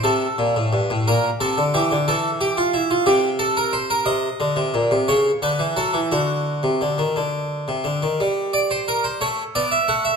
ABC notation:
X:1
M:6/8
L:1/16
Q:3/8=59
K:Gm
V:1 name="Harpsichord"
A6 B2 A2 G2 | A2 G F =E F G2 A B c B | [K:Dphr] e6 ^c2 =B2 A2 | ^F8- F2 z2 |
z2 d c B c ^c2 d =e ^f e |]
V:2 name="Harpsichord" clef=bass
C,2 B,, A,, G,, A,, B,,2 C, D, =E, D, | =E,6 C,6 | [K:Dphr] C,2 D, C, B,, C, ^C,2 D, =E, ^F, E, | D,3 C, D, E, D,3 C, D, E, |
G,6 A,2 =B,2 A,2 |]